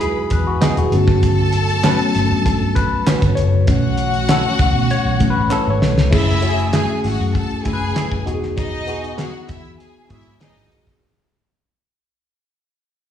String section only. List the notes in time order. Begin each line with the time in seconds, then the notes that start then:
Already playing: B4 B5
0.93 A4 A5
3.68 F#4 F#5
6.13 E4 E5
6.75 G#4 G#5
7.05 F#4 F#5
7.35 A4 A5
7.65 G#4 G#5
8.57 D#4 D#5
9.19 F#4 F#5
9.50 E4 E5
9.79 G#4 G#5
10.10 E4 E5
10.41 D#4 D#5